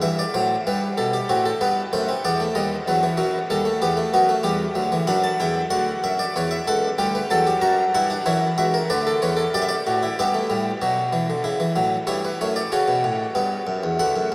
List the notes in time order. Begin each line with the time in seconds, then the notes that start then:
0.02 G2 E3 E5
0.19 D5
0.34 A2 F#3 C5
0.67 G2 G3 B4
0.98 B2 A4
1.13 G4
1.29 A2 C4 F#4
1.46 A4
1.61 G2 B3 B4
1.93 F#2 A3 C5
2.09 C4
2.25 E2 B3 D5
2.40 A3
2.55 D#2 G3 D#5
2.88 E2 F#3 B4
3.03 E3
3.17 F#2 F#3 F#4
3.50 D#2 G3 A4
3.65 A3
3.82 E2 B3 G4
3.97 A3
4.14 F#2 B3 F#4
4.29 A3
4.43 E2 G3 G4
4.75 D2 F#3
4.92 E3
5.07 F#2 F#3 D4 B5
5.24 A5
5.40 E2 E4 G5
5.70 D2 F#4 F#5
6.04 F#2 E5
6.19 D5
6.36 E2 B4 C#5
6.51 E5
6.67 C#2 A4 F#5
6.98 D2 G3 G4 G5
7.15 B4
7.30 E2 F#3 A4 A5
7.47 G4
7.62 F#2 F#4 A#5
7.95 G2 E4 F#5
8.10 D4
8.26 F#2 E3 E4 C#5
8.58 C#2 F#4 E5
8.74 A#4
8.90 D2 D3 B4 D5
9.07 A4
9.22 E2 B4 C#5
9.37 A4
9.54 F#2 G4 D5
9.62 E5
9.69 D5
9.87 A2 F#4
10.03 E4
10.19 G2 B3 G4 E5
10.34 A3
10.50 A2 G3
10.82 B2 F#3 F#4
11.13 E3
11.30 D3
11.44 C#3 E4
11.60 E3
11.76 A2 F#3
12.07 G2 G3 E4 C#5
12.24 B4
12.41 F#2 A3 C#5
12.56 D5
12.72 C#3 C#4 F#4 C#5
12.88 B2
13.04 A2
13.35 G2 B3
13.67 F#2
13.84 E2
13.99 D2 A3 F#5
14.16 F#2